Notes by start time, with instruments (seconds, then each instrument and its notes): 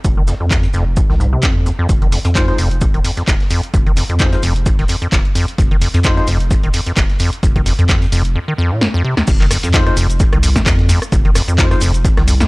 0.04 sub bass F1, acid bass F2, kick, shaker
0.17 acid bass D#3
0.27 acid bass F2, snare, shaker
0.40 acid bass F2, sub bass F2
0.50 acid bass F1, kick, snare, clap, shaker
0.63 closed hi-hat
0.73 sub bass F1, acid bass F2, snare, shaker
0.96 acid bass F2, kick, shaker
1.10 sub bass C2, acid bass D#3, snare
1.20 acid bass G#2, shaker
1.33 acid bass C3
1.43 acid bass F2, sub bass F2, kick, snare, clap, shaker
1.66 acid bass D#2, shaker
1.79 acid bass F2
1.89 sub bass F1, kick, closed hi-hat, shaker
2.02 acid bass D#3, closed hi-hat
2.12 acid bass F2, open hi-hat, shaker
2.25 acid bass F2, sub bass F2, closed hi-hat
2.35 acid bass F1, synth stab G#3 D#4 F4 C5, kick, snare, clap, closed hi-hat, shaker
2.48 synth stab G#3 D#4 F4 C5, snare, closed hi-hat
2.58 sub bass F1, acid bass F2, open hi-hat, shaker
2.71 closed hi-hat
2.81 acid bass F2, kick, closed hi-hat, shaker
2.94 sub bass D#1, acid bass D#3, closed hi-hat
3.04 acid bass F2, open hi-hat, shaker
3.17 acid bass F2, snare, closed hi-hat
3.28 acid bass F1, sub bass F1, kick, snare, clap, closed hi-hat, shaker
3.40 snare, closed hi-hat
3.50 acid bass F2, open hi-hat, shaker
3.63 closed hi-hat
3.74 sub bass F1, acid bass F2, kick, closed hi-hat, shaker
3.86 acid bass D#3, closed hi-hat
3.96 acid bass F2, snare, open hi-hat, shaker
4.10 sub bass F2, acid bass F2, closed hi-hat
4.19 acid bass F1, synth stab G#3 D#4 F4 C5, kick, snare, clap, closed hi-hat, shaker
4.32 synth stab G#3 D#4 F4 C5, closed hi-hat
4.43 sub bass F1, acid bass F2, snare, open hi-hat, shaker
4.56 closed hi-hat
4.66 acid bass F2, kick, closed hi-hat, shaker
4.79 sub bass D#1, acid bass D#3, snare, closed hi-hat
4.88 acid bass F2, open hi-hat, shaker
5.02 acid bass F2, closed hi-hat
5.12 acid bass F1, sub bass F1, kick, snare, clap, closed hi-hat, shaker
5.25 closed hi-hat
5.35 acid bass F2, open hi-hat, shaker
5.48 closed hi-hat
5.58 sub bass F1, acid bass F2, kick, closed hi-hat, shaker
5.71 acid bass D#3, closed hi-hat
5.81 acid bass F2, open hi-hat, shaker
5.94 acid bass F2, sub bass F2, closed hi-hat
6.04 acid bass F1, synth stab G#3 D#4 F4 C5, kick, snare, clap, closed hi-hat, shaker
6.17 synth stab G#3 D#4 F4 C5, snare, closed hi-hat
6.27 sub bass F1, acid bass F2, open hi-hat, shaker
6.40 closed hi-hat
6.51 acid bass F2, kick, closed hi-hat, shaker
6.63 sub bass D#1, acid bass D#3, closed hi-hat
6.74 acid bass F2, open hi-hat, shaker
6.86 acid bass F2, snare, closed hi-hat
6.96 sub bass F1, acid bass F1, kick, snare, clap, closed hi-hat, shaker
7.10 snare, closed hi-hat
7.19 acid bass F2, open hi-hat, shaker
7.33 closed hi-hat
7.43 sub bass F1, acid bass F2, kick, closed hi-hat, shaker
7.56 acid bass D#3, kick, closed hi-hat
7.66 acid bass F2, snare, open hi-hat, shaker
7.79 acid bass F2, sub bass F2, closed hi-hat
7.89 acid bass F1, kick, snare, clap, closed hi-hat, shaker
8.02 closed hi-hat
8.12 sub bass F1, acid bass F2, snare, open hi-hat, shaker
8.25 closed hi-hat
8.35 acid bass F2
8.48 acid bass D#3
8.58 acid bass F2
8.71 acid bass A#2
8.81 acid bass F2, snare
8.94 acid bass F2
9.04 acid bass C3
9.17 acid bass D#2, snare
9.27 sub bass F1, acid bass F2, kick, closed hi-hat, crash, cabasa, shaker
9.40 acid bass D#3, clap, closed hi-hat
9.51 acid bass F2, cross-stick, open hi-hat, cabasa, shaker
9.63 acid bass F2, sub bass F2, closed hi-hat, cabasa
9.74 acid bass F1, synth stab G#3 D#4 F4 C5, kick, snare, clap, closed hi-hat, cabasa, shaker
9.86 synth stab G#3 D#4 F4 C5, cross-stick, snare, closed hi-hat
9.96 sub bass F1, acid bass F2, open hi-hat, cabasa, shaker
10.10 closed hi-hat, cabasa
10.20 acid bass F2, kick, closed hi-hat, cabasa, shaker
10.33 sub bass C2, acid bass D#3, cross-stick, closed hi-hat
10.43 acid bass F2, open hi-hat, cabasa, shaker
10.56 acid bass F2, kick, snare, closed hi-hat, cabasa
10.65 acid bass F1, sub bass F2, kick, cross-stick, snare, clap, closed hi-hat, cabasa, shaker
10.79 snare, closed hi-hat
10.89 acid bass F2, snare, open hi-hat, cabasa, shaker
11.02 cross-stick, closed hi-hat, cabasa
11.12 sub bass F1, acid bass F2, kick, closed hi-hat, cabasa, shaker
11.25 acid bass D#3, closed hi-hat
11.35 acid bass F2, cross-stick, snare, open hi-hat, cabasa, shaker
11.48 acid bass F2, sub bass F2, closed hi-hat, cabasa
11.58 acid bass F1, synth stab G#3 D#4 F4 C5, kick, snare, clap, closed hi-hat, cabasa, shaker
11.71 synth stab G#3 D#4 F4 C5, cross-stick, closed hi-hat
11.80 sub bass F1, acid bass F2, snare, open hi-hat, cabasa, shaker
11.94 closed hi-hat, cabasa
12.05 acid bass F2, kick, closed hi-hat, cabasa, shaker
12.17 sub bass C2, acid bass D#3, cross-stick, snare, closed hi-hat
12.28 acid bass F2, open hi-hat, cabasa, shaker
12.40 acid bass F2, snare, closed hi-hat, cabasa